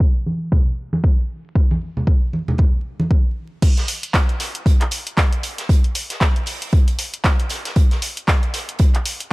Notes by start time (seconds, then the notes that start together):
0.00 kick
0.26 high conga
0.52 kick, low conga
0.93 high conga
1.04 kick
1.55 kick
1.71 high conga
1.97 low conga
2.07 kick
2.33 high conga
2.48 low conga
2.58 kick, low conga
3.00 high conga
3.11 kick
3.62 kick, closed hi-hat, crash
3.77 snare, closed hi-hat
3.88 closed hi-hat, open hi-hat
4.03 closed hi-hat
4.14 kick, snare, clap, closed hi-hat
4.29 closed hi-hat
4.40 snare, closed hi-hat, open hi-hat
4.55 closed hi-hat
4.66 kick, closed hi-hat
4.81 clap, closed hi-hat
4.91 closed hi-hat, open hi-hat
5.07 closed hi-hat
5.18 kick, snare, clap, closed hi-hat
5.33 closed hi-hat
5.43 closed hi-hat, open hi-hat
5.58 snare, closed hi-hat
5.69 kick, closed hi-hat
5.84 closed hi-hat
5.95 closed hi-hat, open hi-hat
6.10 snare, closed hi-hat
6.21 kick, snare, clap, closed hi-hat
6.36 closed hi-hat
6.46 open hi-hat
6.62 closed hi-hat
6.73 kick, closed hi-hat
6.87 closed hi-hat
6.99 closed hi-hat, open hi-hat
7.14 closed hi-hat
7.24 kick, snare, clap, closed hi-hat
7.40 closed hi-hat
7.49 snare, closed hi-hat, open hi-hat
7.65 snare, closed hi-hat
7.76 kick, closed hi-hat
7.91 snare, closed hi-hat
8.02 closed hi-hat, open hi-hat
8.17 closed hi-hat
8.28 kick, snare, clap, closed hi-hat
8.43 closed hi-hat
8.54 snare, closed hi-hat, open hi-hat
8.69 closed hi-hat
8.79 kick, closed hi-hat
8.95 clap, closed hi-hat
9.06 closed hi-hat, open hi-hat
9.20 closed hi-hat